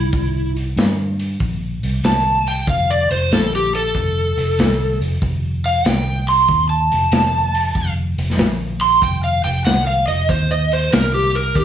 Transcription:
Already playing: fingered electric bass C2, electric slide guitar E4
0.13 fingered electric bass C2, kick, open hi-hat
0.56 open hi-hat
0.76 fingered electric bass G2, snare, open hi-hat
1.19 open hi-hat
1.40 fingered electric bass A#1, kick, open hi-hat
1.83 fingered electric bass C2, open hi-hat
2.03 fingered electric bass C2, electric slide guitar A5, snare, open hi-hat
2.47 electric slide guitar G5, open hi-hat
2.67 fingered electric bass F1, electric slide guitar F5, kick, open hi-hat
2.91 electric slide guitar D5
3.10 fingered electric bass F1, electric slide guitar C5, open hi-hat
3.31 fingered electric bass A#1, electric slide guitar A4, snare, open hi-hat
3.55 electric slide guitar G4
3.75 electric slide guitar A4, open hi-hat
3.95 fingered electric bass F1, kick, open hi-hat
4.37 fingered electric bass F1, open hi-hat
4.59 fingered electric bass C2, snare, open hi-hat
5.01 fingered electric bass F1, open hi-hat
5.22 fingered electric bass F1, kick, open hi-hat
5.65 electric slide guitar F5, open hi-hat
5.85 fingered electric bass C2, electric slide guitar G5, snare, open hi-hat
6.28 electric slide guitar C6, open hi-hat
6.48 fingered electric bass D#2, kick, open hi-hat
6.70 electric slide guitar A5
6.92 fingered electric bass F1, open hi-hat
7.12 fingered electric bass F1, snare, open hi-hat
7.55 open hi-hat
7.75 fingered electric bass F1, kick, open hi-hat
8.18 fingered electric bass F1, open hi-hat
8.30 snare
8.38 fingered electric bass A#1, snare, open hi-hat
8.81 electric slide guitar C6, open hi-hat
9.02 fingered electric bass F1, electric slide guitar G5, kick, open hi-hat
9.24 electric slide guitar F5
9.44 fingered electric bass F1, electric slide guitar G5, open hi-hat
9.65 fingered electric bass C2, electric slide guitar F#5, snare, open hi-hat
9.87 electric slide guitar F5
10.08 fingered electric bass F1, electric slide guitar D#5, open hi-hat
10.29 fingered electric bass D#2, electric slide guitar C5, kick, open hi-hat
10.51 electric slide guitar D#5
10.72 electric slide guitar C5, open hi-hat
10.92 fingered electric bass C2, electric slide guitar A#4, snare, open hi-hat
11.14 electric slide guitar G4
11.35 electric slide guitar A#4, open hi-hat
11.55 fingered electric bass D#2, electric slide guitar G4, kick, open hi-hat

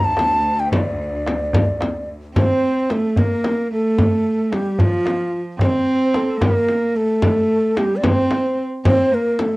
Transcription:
Already playing: cello section D2
0.04 ney A5, tombak ka
0.17 tombak tek, frame drum
0.59 ney G5
0.72 ney D5, tombak dum, frame drum
0.99 tombak ka
1.26 tombak tek, frame drum
1.53 tombak dum, frame drum
1.81 tombak tek, frame drum
2.09 tombak ka
2.36 cello C4, ney C5, tombak dum, frame drum
2.63 tombak ka
2.90 cello A3, ney A4, tombak tek, frame drum
3.16 cello A#3, ney A#4, tombak dum, frame drum
3.44 tombak tek, frame drum
3.71 cello A3, ney A4, tombak ka
3.98 tombak dum, frame drum
4.26 tombak ka
4.51 cello G3, ney G4, tombak tek, frame drum
4.78 cello F3, ney F4, tombak dum, frame drum
5.06 tombak tek, frame drum
5.33 tombak ka
5.59 cello C4, ney C#5, tombak dum, frame drum
5.66 ney C5
6.14 ney A4, tombak tek, frame drum
6.41 cello A#3, ney A#4, tombak dum, frame drum
6.69 frame drum
6.95 cello A3, ney A4, tombak ka
7.22 frame drum, tombak dum
7.77 cello G3, ney G4, tombak tek, frame drum
7.96 ney D5
8.04 cello C4, ney C5, frame drum, tombak dum
8.31 tombak tek, frame drum
8.59 tombak ka
8.85 cello C4, ney C5, tombak dum, frame drum
9.12 cello A#3, ney A#4, tombak ka
9.39 cello A3, ney A4, tombak tek, frame drum

